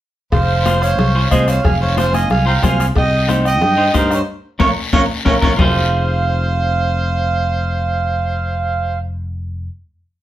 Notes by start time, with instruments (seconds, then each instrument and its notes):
0.32 fingered electric bass F1, harmonica C5, accordion C5 F5, bombo low, bombo rim, cowbell, long guiro
0.65 clean electric guitar F4 G#4 C5, bombo rim, cowbell, high conga, short guiro
0.81 harmonica C5, accordion C#5 F5, bombo rim, short guiro
0.98 fingered electric bass C2, bombo rim, cowbell, low conga, long guiro
1.15 clean electric guitar F4 G#4 C5
1.31 fingered electric bass C2, clean electric guitar F4 G#4 C5, harmonica G#4, accordion C5 D#5, bombo low, bombo rim, cowbell, high conga, short guiro
1.48 harmonica C5, accordion C#5 F5, bombo rim, short guiro
1.63 fingered electric bass F1, harmonica F5, accordion F5 G#5, bombo low, bombo rim, cowbell, low conga, long guiro
1.81 harmonica C5, accordion C#5 F5
1.97 clean electric guitar F4 G#4 C5, harmonica C5, accordion C5 F5, bombo rim, cowbell, high conga, short guiro
2.14 harmonica D#5, accordion F5 G#5, bombo rim, high conga, short guiro
2.30 fingered electric bass C2, accordion F5 G#5, harmonica F5, bombo rim, cowbell, low conga, long guiro
2.46 clean electric guitar F4 G#4 C5, harmonica F5, accordion G5 A#5
2.62 fingered electric bass C2, clean electric guitar F4 G#4 C5, harmonica F5, accordion F5 G#5, bombo low, bombo rim, cowbell, high conga, low conga, low timbale, short guiro
2.80 bombo rim, short guiro
2.95 fingered electric bass C2, harmonica D#5, accordion D#5 G5, bombo low, bombo rim, cowbell, long guiro
3.28 clean electric guitar D#4 G4 C5, bombo rim, cowbell, high conga, short guiro
3.45 accordion D#5 G5, harmonica D#5, bombo rim, short guiro
3.61 fingered electric bass G2, bombo rim, cowbell, low conga, long guiro
3.76 clean electric guitar D#4 G4 C5
3.93 fingered electric bass G2, clean electric guitar D#4 G4 C5, harmonica A#4, accordion C5 D#5, bombo low, bombo rim, cowbell, high conga, short guiro
4.11 accordion C#5 F5, bombo rim, short guiro
4.15 harmonica C5
4.59 fingered electric bass A#1, clean electric guitar C#4 F4 A#4, harmonica C#5, accordion C#5 F5 A#5, bombo low, high conga, high timbale, long guiro
4.93 fingered electric bass A#1, clean electric guitar C#4 F4 A#4, harmonica C#5, accordion C#5 F5 A#5, bombo low, high conga, high timbale, long guiro
5.25 fingered electric bass A#1, clean electric guitar C#4 F4 A#4, harmonica C#5, accordion C#5 F5 A#5, bombo low, high conga, high timbale, long guiro
5.42 fingered electric bass A#1, clean electric guitar C#4 F4 A#4, accordion C#5 F5 A#5, harmonica C#5, bombo low, high conga, high timbale, long guiro
5.57 fingered electric bass F1, clean electric guitar F4 G#4 C5, accordion F5, bombo low, low conga, low timbale
5.61 harmonica C5